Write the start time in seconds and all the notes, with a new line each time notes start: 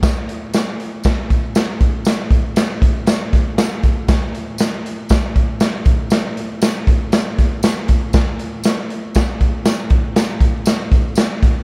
0.03 kick, snare, closed hi-hat, tambourine
0.29 closed hi-hat
0.53 snare, closed hi-hat, tambourine
0.80 closed hi-hat
1.04 kick, snare, closed hi-hat, tambourine
1.30 kick, closed hi-hat
1.55 snare, closed hi-hat, tambourine
1.80 kick, closed hi-hat
2.05 snare, closed hi-hat, tambourine
2.31 kick, closed hi-hat
2.56 snare, closed hi-hat, tambourine
2.82 kick, closed hi-hat
3.06 snare, closed hi-hat, tambourine
3.33 kick, snare, closed hi-hat
3.58 snare, closed hi-hat, tambourine
3.83 kick, closed hi-hat
4.08 kick, snare, closed hi-hat, tambourine
4.35 closed hi-hat
4.58 snare, closed hi-hat, tambourine
4.86 closed hi-hat
5.09 kick, snare, closed hi-hat, tambourine
5.36 kick, closed hi-hat
5.60 snare, closed hi-hat, tambourine
5.85 kick, closed hi-hat
6.10 snare, closed hi-hat, tambourine
6.37 closed hi-hat
6.62 snare, closed hi-hat, tambourine
6.87 kick, closed hi-hat
7.12 snare, closed hi-hat, tambourine
7.38 kick, snare, closed hi-hat
7.63 snare, closed hi-hat, tambourine
7.88 kick, closed hi-hat
8.13 kick, snare, closed hi-hat, tambourine
8.39 closed hi-hat
8.64 snare, closed hi-hat, tambourine
8.90 closed hi-hat
9.15 kick, snare, closed hi-hat, tambourine
9.41 kick, closed hi-hat
9.65 snare, closed hi-hat, tambourine
9.90 kick, closed hi-hat
10.16 snare, closed hi-hat, tambourine
10.40 kick, closed hi-hat
10.66 snare, closed hi-hat, tambourine
10.92 kick, closed hi-hat
11.15 snare, closed hi-hat, tambourine
11.43 kick, snare, closed hi-hat